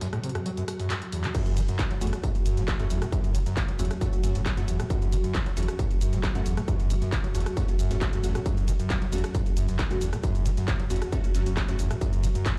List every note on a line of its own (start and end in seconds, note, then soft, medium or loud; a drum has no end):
0.00 0.08 F#2 medium
0.00 1.33 F#3 medium
0.00 1.33 F#4 medium
0.00 snare loud
0.00 closed hi-hat medium
0.00 tambourine medium
0.13 0.19 A2 medium
0.13 cross-stick medium
0.13 closed hi-hat medium
0.24 0.30 C3 medium
0.24 open hi-hat loud
0.24 tambourine medium
0.29 closed hi-hat medium
0.35 0.39 F#2 medium
0.35 cross-stick medium
0.35 closed hi-hat medium
0.46 0.50 F#3 medium
0.46 closed hi-hat medium
0.46 tambourine medium
0.57 0.63 F#2 medium
0.57 closed hi-hat soft
0.68 cross-stick medium
0.68 open hi-hat loud
0.68 tambourine medium
0.80 0.88 F#2 medium
0.80 closed hi-hat soft
0.80 open hi-hat medium
0.90 0.94 F#2 medium
0.90 snare loud
0.90 clap loud
0.90 closed hi-hat medium
0.90 tambourine medium
1.02 snare soft
1.02 closed hi-hat medium
1.12 1.26 E2 medium
1.12 open hi-hat loud
1.12 tambourine medium
1.24 1.28 F#3 loud
1.24 clap medium
1.24 closed hi-hat medium
1.35 1.58 F#2 loud
1.35 12.59 F#3 medium
1.35 12.59 F#4 medium
1.35 kick loud
1.35 closed hi-hat medium
1.35 crash loud
1.35 ride medium
1.35 tambourine medium
1.35 shaker soft
1.46 1.56 F#1 medium
1.46 closed hi-hat medium
1.46 ride medium
1.46 shaker soft
1.57 1.68 F#1 loud
1.57 1.61 F#3 medium
1.57 snare soft
1.57 open hi-hat loud
1.57 ride medium
1.57 tambourine medium
1.57 shaker medium
1.68 1.81 F#2 loud
1.68 closed hi-hat medium
1.68 ride medium
1.68 shaker soft
1.79 1.83 A3 loud
1.79 kick loud
1.79 snare loud
1.79 clap loud
1.79 closed hi-hat medium
1.79 ride medium
1.79 tambourine medium
1.79 shaker soft
1.91 2.01 F#1 medium
1.91 1.94 F#3 medium
1.91 snare medium
1.91 closed hi-hat medium
1.91 ride medium
2.01 2.13 F#1 medium
2.01 2.11 E2 loud
2.01 2.11 A3 loud
2.01 2.11 C#4 medium
2.01 2.11 F#4 loud
2.01 open hi-hat loud
2.01 ride medium
2.01 tambourine medium
2.01 shaker medium
2.07 closed hi-hat medium
2.13 cross-stick medium
2.13 closed hi-hat medium
2.13 ride medium
2.13 shaker soft
2.24 2.30 F#2 medium
2.24 kick loud
2.24 closed hi-hat medium
2.24 ride medium
2.24 tambourine medium
2.24 shaker soft
2.35 2.45 F#1 medium
2.35 closed hi-hat medium
2.35 ride medium
2.35 shaker soft
2.46 2.57 F#1 loud
2.46 2.59 F#2 medium
2.46 open hi-hat loud
2.46 ride medium
2.46 tambourine medium
2.46 shaker medium
2.57 2.68 F#1 medium
2.57 2.63 A2 loud
2.57 snare medium
2.57 closed hi-hat medium
2.57 ride medium
2.57 shaker soft
2.68 kick loud
2.68 cross-stick medium
2.68 snare loud
2.68 clap loud
2.68 closed hi-hat medium
2.68 ride medium
2.68 tambourine medium
2.68 shaker soft
2.79 2.90 F#1 medium
2.79 2.85 F#2 loud
2.79 2.89 A3 loud
2.79 2.89 C#4 medium
2.79 2.89 F#4 loud
2.79 closed hi-hat medium
2.79 ride medium
2.79 shaker soft
2.90 3.02 F#1 loud
2.90 3.00 E2 loud
2.90 snare soft
2.90 open hi-hat loud
2.90 ride medium
2.90 tambourine medium
2.90 shaker medium
3.02 3.05 A2 loud
3.02 cross-stick medium
3.02 closed hi-hat medium
3.02 ride medium
3.02 shaker soft
3.12 3.36 F#2 loud
3.12 kick loud
3.12 closed hi-hat medium
3.12 ride medium
3.12 tambourine medium
3.12 shaker soft
3.24 3.34 F#1 medium
3.24 closed hi-hat medium
3.24 ride medium
3.24 shaker soft
3.35 3.46 F#1 loud
3.35 3.38 F#3 medium
3.35 open hi-hat loud
3.35 ride medium
3.35 tambourine medium
3.35 shaker medium
3.46 3.58 F#2 loud
3.46 snare medium
3.46 closed hi-hat medium
3.46 ride medium
3.46 shaker soft
3.57 3.61 A3 loud
3.57 kick loud
3.57 snare loud
3.57 clap loud
3.57 closed hi-hat medium
3.57 ride medium
3.57 tambourine medium
3.57 shaker soft
3.68 3.78 F#1 medium
3.68 3.72 F#3 medium
3.68 closed hi-hat medium
3.68 ride medium
3.79 3.90 F#1 loud
3.79 3.89 E2 loud
3.79 3.89 A3 medium
3.79 3.89 C#4 medium
3.79 3.89 F#4 loud
3.79 open hi-hat loud
3.79 ride medium
3.79 tambourine medium
3.79 shaker medium
3.85 closed hi-hat medium
3.91 cross-stick medium
3.91 closed hi-hat medium
3.91 ride medium
3.91 shaker soft
4.01 4.08 F#2 medium
4.01 4.21 A3 medium
4.01 4.21 C#4 medium
4.01 4.21 F#4 loud
4.01 kick loud
4.01 closed hi-hat medium
4.01 ride medium
4.01 tambourine medium
4.01 shaker soft
4.13 4.23 F#1 medium
4.13 closed hi-hat soft
4.13 closed hi-hat medium
4.13 ride medium
4.13 shaker soft
4.23 4.35 F#1 loud
4.23 4.37 F#2 medium
4.23 4.34 A3 loud
4.23 4.34 C#4 medium
4.23 4.34 F#4 loud
4.23 open hi-hat loud
4.23 ride medium
4.23 tambourine medium
4.23 shaker medium
4.35 4.46 F#1 medium
4.35 4.41 A2 loud
4.35 closed hi-hat soft
4.35 open hi-hat medium
4.35 ride medium
4.35 shaker soft
4.46 kick loud
4.46 cross-stick medium
4.46 snare loud
4.46 clap loud
4.46 closed hi-hat medium
4.46 ride medium
4.46 tambourine medium
4.46 shaker soft
4.57 4.67 F#1 medium
4.57 4.63 F#2 loud
4.57 4.67 A3 loud
4.57 4.67 C#4 medium
4.57 4.67 F#4 loud
4.57 closed hi-hat soft
4.57 closed hi-hat medium
4.57 ride medium
4.57 shaker soft
4.68 4.79 F#1 loud
4.68 4.78 E2 loud
4.68 open hi-hat loud
4.68 ride medium
4.68 tambourine medium
4.68 shaker medium
4.80 4.83 A2 loud
4.80 cross-stick medium
4.80 closed hi-hat medium
4.80 ride medium
4.80 shaker soft
4.90 5.14 F#2 loud
4.90 kick loud
4.90 closed hi-hat medium
4.90 ride medium
4.90 tambourine medium
4.90 shaker soft
5.02 5.12 F#1 medium
5.02 closed hi-hat medium
5.02 ride medium
5.02 shaker soft
5.12 5.24 F#1 loud
5.12 5.16 F#3 medium
5.12 snare soft
5.12 open hi-hat loud
5.12 ride medium
5.12 tambourine medium
5.12 shaker medium
5.24 5.36 F#2 loud
5.24 closed hi-hat medium
5.24 ride medium
5.24 shaker soft
5.35 5.39 A3 loud
5.35 kick loud
5.35 snare loud
5.35 clap loud
5.35 closed hi-hat medium
5.35 ride medium
5.35 tambourine medium
5.35 shaker soft
5.46 5.56 F#1 medium
5.46 5.50 F#3 medium
5.46 snare soft
5.46 closed hi-hat medium
5.46 ride medium
5.57 5.68 F#1 loud
5.57 5.66 E2 loud
5.57 5.67 A3 loud
5.57 5.67 C#4 medium
5.57 5.67 F#4 loud
5.57 open hi-hat loud
5.57 ride medium
5.57 tambourine medium
5.57 shaker medium
5.63 closed hi-hat medium
5.68 cross-stick medium
5.68 closed hi-hat medium
5.68 ride medium
5.68 shaker soft
5.79 5.86 F#2 medium
5.79 kick loud
5.79 closed hi-hat medium
5.79 ride medium
5.79 tambourine medium
5.79 shaker soft
5.91 6.01 F#1 medium
5.91 closed hi-hat medium
5.91 ride medium
5.91 shaker soft
6.01 6.12 F#1 loud
6.01 6.14 F#2 medium
6.01 open hi-hat loud
6.01 ride medium
6.01 tambourine medium
6.01 shaker medium
6.13 6.23 F#1 medium
6.13 6.19 A2 loud
6.13 snare medium
6.13 closed hi-hat medium
6.13 ride medium
6.13 shaker soft
6.24 kick loud
6.24 cross-stick medium
6.24 snare loud
6.24 clap loud
6.24 closed hi-hat medium
6.24 ride medium
6.24 tambourine medium
6.24 shaker soft
6.35 6.45 F#1 medium
6.35 6.41 F#2 loud
6.35 6.44 A3 loud
6.35 6.44 C#4 medium
6.35 6.44 F#4 loud
6.35 closed hi-hat medium
6.35 ride medium
6.35 shaker soft
6.46 6.57 F#1 loud
6.46 6.55 E2 loud
6.46 snare medium
6.46 open hi-hat loud
6.46 ride medium
6.46 tambourine medium
6.46 shaker medium
6.57 6.61 A2 loud
6.57 cross-stick medium
6.57 closed hi-hat medium
6.57 ride medium
6.57 shaker soft
6.68 6.92 F#2 loud
6.68 kick loud
6.68 closed hi-hat medium
6.68 ride medium
6.68 tambourine medium
6.68 shaker soft
6.80 6.90 F#1 medium
6.80 closed hi-hat medium
6.80 ride medium
6.80 shaker soft
6.90 7.02 F#1 loud
6.90 6.94 F#3 medium
6.90 open hi-hat loud
6.90 ride medium
6.90 tambourine medium
6.90 shaker medium
7.02 7.14 F#2 loud
7.02 snare medium
7.02 closed hi-hat medium
7.02 ride medium
7.02 shaker soft
7.12 7.16 A3 loud
7.12 kick loud
7.12 snare loud
7.12 clap loud
7.12 closed hi-hat medium
7.12 ride medium
7.12 tambourine medium
7.12 shaker soft
7.24 7.34 F#1 medium
7.24 7.28 F#3 medium
7.24 closed hi-hat soft
7.24 ride medium
7.35 7.46 F#1 loud
7.35 7.44 E2 loud
7.35 7.45 A3 medium
7.35 7.45 C#4 medium
7.35 7.45 F#4 loud
7.35 open hi-hat loud
7.35 ride medium
7.35 tambourine medium
7.35 shaker medium
7.40 closed hi-hat medium
7.46 cross-stick medium
7.46 closed hi-hat medium
7.46 ride medium
7.46 shaker soft
7.57 7.63 F#2 medium
7.57 7.77 A3 medium
7.57 7.77 C#4 medium
7.57 7.77 F#4 loud
7.57 kick loud
7.57 closed hi-hat medium
7.57 ride medium
7.57 tambourine medium
7.57 shaker soft
7.68 7.79 F#1 medium
7.68 closed hi-hat soft
7.68 closed hi-hat medium
7.68 ride medium
7.68 shaker soft
7.79 7.90 F#1 loud
7.79 7.92 F#2 medium
7.79 open hi-hat loud
7.79 ride medium
7.79 tambourine medium
7.79 shaker medium
7.91 8.01 F#1 medium
7.91 7.97 A2 loud
7.91 8.06 A3 medium
7.91 8.06 C#4 medium
7.91 8.06 F#4 loud
7.91 closed hi-hat soft
7.91 open hi-hat medium
7.91 ride medium
7.91 shaker soft
8.01 kick loud
8.01 cross-stick medium
8.01 snare loud
8.01 clap loud
8.01 closed hi-hat medium
8.01 ride medium
8.01 tambourine medium
8.01 shaker soft
8.13 8.23 F#1 medium
8.13 8.19 F#2 loud
8.13 8.21 A3 medium
8.13 8.21 C#4 medium
8.13 8.21 F#4 medium
8.13 closed hi-hat soft
8.13 closed hi-hat medium
8.13 ride medium
8.13 shaker soft
8.24 8.35 F#1 loud
8.24 8.33 E2 loud
8.24 8.39 A3 loud
8.24 8.39 C#4 medium
8.24 8.39 F#4 loud
8.24 open hi-hat loud
8.24 ride medium
8.24 tambourine medium
8.24 shaker medium
8.35 8.39 A2 loud
8.35 cross-stick medium
8.35 closed hi-hat medium
8.35 ride medium
8.35 shaker soft
8.46 8.70 F#2 loud
8.46 kick loud
8.46 closed hi-hat medium
8.46 ride medium
8.46 tambourine medium
8.46 shaker soft
8.57 8.67 F#1 medium
8.57 closed hi-hat medium
8.57 ride medium
8.57 shaker soft
8.68 8.79 F#1 loud
8.68 8.72 F#3 medium
8.68 snare soft
8.68 open hi-hat loud
8.68 ride medium
8.68 tambourine medium
8.68 shaker medium
8.79 8.92 F#2 loud
8.79 closed hi-hat soft
8.79 ride medium
8.79 shaker soft
8.90 8.94 A3 loud
8.90 kick loud
8.90 snare loud
8.90 clap loud
8.90 closed hi-hat medium
8.90 ride medium
8.90 tambourine medium
8.90 shaker soft
9.02 9.12 F#1 medium
9.02 9.05 F#3 medium
9.02 snare soft
9.02 closed hi-hat soft
9.02 ride medium
9.12 9.24 F#1 medium
9.12 9.22 E2 loud
9.12 9.23 A3 loud
9.12 9.23 C#4 medium
9.12 9.23 F#4 loud
9.12 open hi-hat loud
9.12 ride medium
9.12 tambourine medium
9.12 shaker medium
9.18 closed hi-hat medium
9.24 cross-stick medium
9.24 closed hi-hat medium
9.24 ride medium
9.24 shaker soft
9.35 9.41 F#2 medium
9.35 kick loud
9.35 closed hi-hat medium
9.35 ride medium
9.35 tambourine medium
9.35 shaker soft
9.46 9.56 F#1 medium
9.46 closed hi-hat soft
9.46 ride medium
9.46 shaker soft
9.57 9.68 F#1 loud
9.57 9.66 F#2 medium
9.57 open hi-hat loud
9.57 ride medium
9.57 tambourine medium
9.57 shaker medium
9.68 9.79 F#1 medium
9.68 9.77 F#2 medium
9.68 snare medium
9.68 closed hi-hat soft
9.68 ride medium
9.68 shaker soft
9.79 kick loud
9.79 cross-stick medium
9.79 snare loud
9.79 clap loud
9.79 closed hi-hat medium
9.79 ride medium
9.79 tambourine medium
9.79 shaker soft
9.91 10.01 F#1 medium
9.91 9.97 F#2 loud
9.91 10.00 A3 loud
9.91 10.00 C#4 medium
9.91 10.00 F#4 loud
9.91 closed hi-hat medium
9.91 ride medium
9.91 shaker soft
10.01 10.13 F#1 medium
10.01 10.11 E2 loud
10.01 snare medium
10.01 open hi-hat loud
10.01 ride medium
10.01 tambourine medium
10.01 shaker medium
10.13 10.16 A2 loud
10.13 cross-stick medium
10.13 closed hi-hat medium
10.13 ride medium
10.13 shaker soft
10.23 10.47 F#2 loud
10.23 kick loud
10.23 closed hi-hat medium
10.23 ride medium
10.23 tambourine medium
10.23 shaker soft
10.35 10.45 F#1 medium
10.35 closed hi-hat medium
10.35 ride medium
10.35 shaker soft
10.46 10.57 F#1 loud
10.46 10.50 F#3 medium
10.46 open hi-hat loud
10.46 ride medium
10.46 tambourine medium
10.46 shaker medium
10.57 10.70 F#2 loud
10.57 snare medium
10.57 closed hi-hat soft
10.57 ride medium
10.57 shaker soft
10.68 10.72 A3 loud
10.68 kick loud
10.68 snare loud
10.68 clap loud
10.68 closed hi-hat medium
10.68 ride medium
10.68 tambourine medium
10.68 shaker soft
10.80 10.90 F#1 medium
10.80 10.83 F#3 medium
10.80 closed hi-hat soft
10.80 ride medium
10.90 11.02 F#1 loud
10.90 11.00 E2 loud
10.90 11.00 A3 medium
10.90 11.00 C#4 medium
10.90 11.00 F#4 loud
10.90 open hi-hat loud
10.90 ride medium
10.90 tambourine medium
10.90 shaker medium
10.96 closed hi-hat medium
11.02 cross-stick medium
11.02 closed hi-hat medium
11.02 ride medium
11.02 shaker soft
11.12 11.19 F#2 medium
11.12 11.32 A3 loud
11.12 11.32 C#4 medium
11.12 11.32 F#4 loud
11.12 kick loud
11.12 closed hi-hat medium
11.12 ride medium
11.12 tambourine medium
11.12 shaker soft
11.24 11.34 F#1 medium
11.24 closed hi-hat soft
11.24 ride medium
11.24 shaker soft
11.35 11.46 F#1 loud
11.35 11.44 F#2 medium
11.35 11.45 A3 medium
11.35 11.45 C#4 medium
11.35 11.45 F#4 loud
11.35 open hi-hat loud
11.35 ride medium
11.35 tambourine medium
11.35 shaker medium
11.46 11.57 F#1 medium
11.46 11.55 F#2 medium
11.46 closed hi-hat soft
11.46 open hi-hat medium
11.46 ride medium
11.46 shaker soft
11.57 kick loud
11.57 cross-stick medium
11.57 snare loud
11.57 clap loud
11.57 closed hi-hat medium
11.57 ride medium
11.57 tambourine medium
11.57 shaker soft
11.68 11.78 F#1 medium
11.68 11.74 F#2 loud
11.68 11.78 A3 loud
11.68 11.78 C#4 medium
11.68 11.78 F#4 loud
11.68 closed hi-hat medium
11.68 closed hi-hat soft
11.68 ride medium
11.68 shaker soft
11.79 11.90 F#1 loud
11.79 11.89 E2 loud
11.79 open hi-hat loud
11.79 ride medium
11.79 tambourine medium
11.79 shaker medium
11.91 11.94 A2 loud
11.91 cross-stick medium
11.91 closed hi-hat soft
11.91 ride medium
11.91 shaker soft
12.01 12.25 F#2 loud
12.01 kick loud
12.01 closed hi-hat medium
12.01 ride medium
12.01 tambourine medium
12.01 shaker soft
12.13 12.23 F#1 medium
12.13 closed hi-hat medium
12.13 ride medium
12.13 shaker soft
12.24 12.35 F#1 loud
12.24 12.27 F#3 medium
12.24 snare soft
12.24 open hi-hat loud
12.24 ride medium
12.24 tambourine medium
12.24 shaker medium
12.35 12.47 F#2 loud
12.35 closed hi-hat medium
12.35 ride medium
12.35 shaker soft
12.46 12.50 A3 loud
12.46 kick loud
12.46 snare loud
12.46 clap loud
12.46 closed hi-hat medium
12.46 ride medium
12.46 tambourine medium
12.46 shaker soft